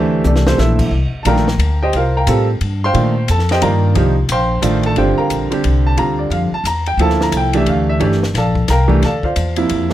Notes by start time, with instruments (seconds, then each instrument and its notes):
Already playing: upright bass D2, grand piano E3 A3 D4 E4 G4 A4 C5 E5
0.24 upright bass C2, grand piano D4 G4 A4 D5, hi-hat pedal, high tom
0.36 snare
0.47 grand piano C4 G4 A4 C5, snare
0.58 upright bass A#1, grand piano E4 A4 C5 E5, snare
0.79 kick, crash
0.91 upright bass C2
1.12 muted upright bass stroke
1.23 upright bass A#1, grand piano D#3 A3 D4 F4 A5 A#5, hi-hat pedal, ride
1.27 grand piano A#4 F5 G5
1.36 snare
1.48 snare
1.58 upright bass D2, ride
1.83 grand piano G4 C5 D#5 G5
1.93 upright bass C2, grand piano F4 A#4 C5 F5, ride
2.17 grand piano A#4 F5 G5 A#5
2.27 upright bass A2, grand piano G3 C4 F4 A4, hi-hat pedal, ride
2.61 upright bass G2, ride
2.84 grand piano C5 F5 G5 C6
2.94 upright bass A#2, grand piano D#3 A3 D4 F4, ride
3.28 upright bass F2, grand piano A4 A5, hi-hat pedal, ride
3.39 snare
3.49 grand piano G4 C5 D#5 G5, snare, ride
3.61 upright bass G2, grand piano D#3 A#3 D4 F4 A#4 F5 G5 A#5, ride
3.95 upright bass C2, grand piano F3 A#3 D#4 G4, ride
4.29 upright bass A#1, grand piano C5 F5 G5 C6, hi-hat pedal, ride
4.62 upright bass A1, grand piano D#3 A3 D4 F4, hi-hat pedal, ride
4.83 grand piano A4 A5, ride
4.96 upright bass G1, grand piano D3 G3 C4 F4 G4 C5 D5 G5, ride
5.18 grand piano A#4 F5 G5 A#5, muted upright bass stroke
5.30 upright bass A#1, hi-hat pedal, ride
5.51 grand piano D3 G3 C4 G4, muted upright bass stroke, ride
5.64 upright bass C2, ride
5.87 grand piano A5
5.97 upright bass D2, grand piano D3 G3 C4 F4 A#5, ride
6.19 grand piano D5
6.30 upright bass F2, grand piano F5, ride
6.51 grand piano A5, muted upright bass stroke
6.64 upright bass E2, grand piano A#5, hi-hat pedal, ride
6.86 grand piano G5, ride
6.97 upright bass D2, grand piano F3 A#3 E4 A4, ride
7.02 grand piano A5
7.10 snare
7.21 grand piano A#5, snare
7.32 upright bass C2, hi-hat pedal, ride
7.37 grand piano G5
7.53 grand piano E3 A3 D4 G4 E5, ride
7.66 upright bass D2, grand piano F5, ride
7.89 grand piano E5
8.00 upright bass G1, grand piano E3 A3 D4 G4 C#5, ride
8.04 grand piano D5
8.12 snare
8.23 snare
8.34 upright bass A#1, grand piano A4 D5 F5 A5, snare, ride
8.55 kick
8.68 upright bass C2, grand piano A#4 F5 G5 A#5, snare, hi-hat pedal, ride
8.88 grand piano E3 A3 D4 G4, kick
9.03 upright bass D2, grand piano A4 D5 F5 A5, snare, ride
9.23 grand piano F4 C5 D5 F5, kick
9.36 upright bass E2, hi-hat pedal, ride
9.56 grand piano C3 F3 A#3 E4, ride
9.69 upright bass F2, ride
9.90 snare